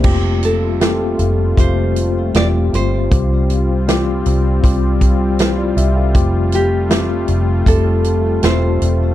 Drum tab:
CC |x-------|--------|--------|
HH |-xxxxxxx|xxxxxxxx|xxxxxxxx|
SD |--o---o-|--o---o-|--o---o-|
BD |o---o---|o---oo--|o---o---|